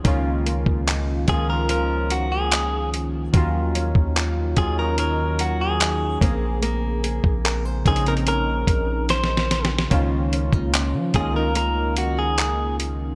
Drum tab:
HH |x-----------x-----------x-----------x-----------x-----------x-----------x-----------x-----------|x-----------x-----------x-----------x-----------x-----------x-----------x-----------x-----------|x-----------x-----------x-----------x--x--x--x--x-----------x-----------x-----------x-----------|x-----------x-----------x-----------x-----------x-----------x-----------x-----------x-----------|
CP |------------------------x-----------------------------------------------x-----------------------|------------------------x-----------------------------------------------x-----------------------|------------------------x-----------------------------------------------------------------------|------------------------x-----------------------------------------------x-----------------------|
SD |------------------------------------------------------------------------------------------------|------------------------------------------------------------------------------------------------|------------------------------------------------------------------------o---o---o---o---o---o---|------------------------------------------------------------------------------------------------|
BD |o-----------------o-----------------o-----------------------------------------------------------|o-----------------o-----------------o-----------------------------------------------o-----------|------------------o-----------------o-----------------------o-----------------------------------|o-----------------o-----------------o-----------------------------------------------------------|